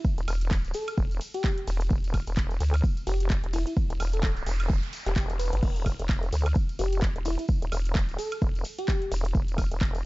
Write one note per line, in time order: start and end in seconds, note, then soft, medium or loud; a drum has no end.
0.05 kick loud
0.05 tambourine medium
0.18 0.26 E1 loud
0.18 closed hi-hat medium
0.18 tambourine soft
0.28 0.73 E1 loud
0.28 open hi-hat loud
0.28 ride medium
0.28 tambourine medium
0.28 high woodblock medium
0.41 closed hi-hat medium
0.41 tambourine soft
0.51 kick loud
0.51 clap loud
0.51 tambourine medium
0.51 high woodblock medium
0.65 closed hi-hat soft
0.65 tambourine soft
0.74 0.94 A4 medium
0.74 open hi-hat medium
0.74 ride medium
0.74 tambourine medium
0.88 closed hi-hat medium
0.88 tambourine soft
0.88 high woodblock medium
0.98 1.19 E1 loud
0.98 kick loud
0.98 tambourine soft
1.11 closed hi-hat soft
1.11 tambourine soft
1.21 open hi-hat loud
1.21 ride medium
1.21 tambourine loud
1.34 1.67 G4 medium
1.34 closed hi-hat medium
1.34 tambourine soft
1.44 kick loud
1.44 clap loud
1.44 tambourine medium
1.58 closed hi-hat medium
1.67 1.89 E1 loud
1.67 open hi-hat medium
1.67 ride medium
1.67 tambourine medium
1.81 closed hi-hat medium
1.81 tambourine soft
1.90 2.25 E1 loud
1.90 kick loud
1.90 tambourine soft
2.04 closed hi-hat medium
2.04 tambourine soft
2.14 kick medium
2.14 open hi-hat loud
2.14 ride medium
2.14 tambourine medium
2.14 high woodblock medium
2.27 2.59 E1 loud
2.27 closed hi-hat medium
2.27 tambourine soft
2.37 kick loud
2.37 clap loud
2.37 high woodblock medium
2.51 closed hi-hat soft
2.51 tambourine soft
2.60 2.82 D2 loud
2.60 open hi-hat medium
2.60 ride medium
2.60 tambourine medium
2.74 closed hi-hat medium
2.74 tambourine soft
2.74 high woodblock medium
2.84 kick loud
2.84 tambourine medium
2.97 closed hi-hat soft
2.97 tambourine soft
3.07 3.42 F1 loud
3.07 3.26 G4 medium
3.07 open hi-hat loud
3.07 ride medium
3.07 tambourine medium
3.20 closed hi-hat medium
3.20 tambourine soft
3.30 kick loud
3.30 clap loud
3.30 tambourine medium
3.44 3.65 E1 loud
3.44 closed hi-hat medium
3.53 3.62 E4 medium
3.53 open hi-hat medium
3.53 ride medium
3.53 tambourine medium
3.67 3.73 E4 medium
3.67 closed hi-hat medium
3.67 tambourine soft
3.77 kick loud
3.77 tambourine soft
3.77 noise sweep medium
3.90 3.98 E1 loud
3.90 closed hi-hat medium
3.90 tambourine soft
4.00 4.45 E1 loud
4.00 open hi-hat loud
4.00 ride medium
4.00 tambourine medium
4.00 high woodblock medium
4.13 4.31 A4 medium
4.13 closed hi-hat medium
4.13 tambourine soft
4.23 kick loud
4.23 clap loud
4.23 tambourine medium
4.23 high woodblock medium
4.37 closed hi-hat soft
4.37 tambourine soft
4.46 4.81 E1 loud
4.46 open hi-hat medium
4.46 ride medium
4.46 tambourine medium
4.60 closed hi-hat medium
4.60 high woodblock medium
4.70 kick loud
4.70 tambourine soft
4.83 closed hi-hat soft
4.83 tambourine soft
4.93 open hi-hat loud
4.93 ride medium
4.93 tambourine loud
5.06 5.51 E1 loud
5.06 5.13 G4 medium
5.06 clap soft
5.06 closed hi-hat medium
5.06 tambourine soft
5.16 5.25 G4 medium
5.16 kick loud
5.16 clap loud
5.16 tambourine medium
5.30 closed hi-hat medium
5.30 tambourine soft
5.39 5.86 B4 medium
5.39 open hi-hat medium
5.39 ride medium
5.39 tambourine medium
5.52 5.61 G1 loud
5.52 closed hi-hat medium
5.52 tambourine soft
5.63 5.97 E1 loud
5.63 kick loud
5.63 crash medium
5.63 tambourine medium
5.76 closed hi-hat medium
5.76 tambourine soft
5.86 kick medium
5.86 open hi-hat loud
5.86 ride medium
5.86 tambourine loud
5.86 high woodblock medium
5.99 6.31 E1 loud
5.99 closed hi-hat medium
5.99 tambourine soft
6.09 kick loud
6.09 clap loud
6.09 tambourine medium
6.09 high woodblock medium
6.23 closed hi-hat soft
6.23 tambourine soft
6.32 6.54 D2 loud
6.32 open hi-hat loud
6.32 ride medium
6.32 tambourine medium
6.46 closed hi-hat medium
6.46 tambourine soft
6.46 high woodblock medium
6.55 kick loud
6.55 tambourine medium
6.69 closed hi-hat soft
6.69 tambourine soft
6.79 7.14 F1 loud
6.79 6.99 G4 medium
6.79 open hi-hat loud
6.79 ride medium
6.79 tambourine medium
6.92 closed hi-hat medium
6.92 tambourine soft
7.02 kick loud
7.02 clap loud
7.02 tambourine soft
7.16 7.37 E1 loud
7.16 closed hi-hat medium
7.25 7.34 E4 medium
7.25 open hi-hat loud
7.25 ride medium
7.25 tambourine medium
7.39 7.45 E4 medium
7.39 closed hi-hat medium
7.39 tambourine soft
7.48 kick loud
7.48 tambourine medium
7.62 7.71 E1 loud
7.62 closed hi-hat medium
7.62 tambourine soft
7.72 8.17 E1 loud
7.72 open hi-hat loud
7.72 ride medium
7.72 tambourine loud
7.72 high woodblock medium
7.85 closed hi-hat medium
7.85 tambourine soft
7.95 kick loud
7.95 clap loud
7.95 tambourine medium
7.95 high woodblock medium
8.09 closed hi-hat soft
8.09 tambourine soft
8.19 8.38 A4 medium
8.19 open hi-hat loud
8.19 ride medium
8.19 tambourine medium
8.32 closed hi-hat medium
8.32 tambourine soft
8.32 high woodblock medium
8.42 8.64 E1 loud
8.42 kick loud
8.42 tambourine medium
8.55 closed hi-hat soft
8.55 tambourine soft
8.64 open hi-hat loud
8.64 ride medium
8.64 tambourine medium
8.78 9.12 G4 loud
8.78 closed hi-hat medium
8.78 tambourine soft
8.88 kick loud
8.88 clap loud
8.88 tambourine medium
9.02 closed hi-hat medium
9.12 9.33 E1 loud
9.12 open hi-hat loud
9.12 ride medium
9.12 tambourine medium
9.25 closed hi-hat medium
9.25 tambourine soft
9.35 9.69 E1 loud
9.35 kick loud
9.35 tambourine medium
9.48 closed hi-hat medium
9.48 tambourine soft
9.58 kick medium
9.58 open hi-hat loud
9.58 ride medium
9.58 tambourine medium
9.58 high woodblock medium
9.72 10.03 E1 loud
9.72 closed hi-hat medium
9.72 tambourine soft
9.81 kick loud
9.81 clap loud
9.81 tambourine medium
9.81 high woodblock medium
9.95 closed hi-hat soft
9.95 tambourine soft